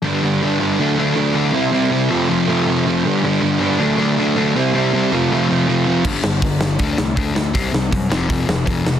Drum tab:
CC |--------|--------|--------|--------|
HH |--------|--------|--------|--------|
SD |--------|--------|--------|--------|
BD |--------|--------|--------|--------|

CC |x-------|--------|
HH |--o-o-o-|o-o-o-o-|
SD |-o-o-o-o|-o-o-o-o|
BD |o-o-o-o-|o-o-o-o-|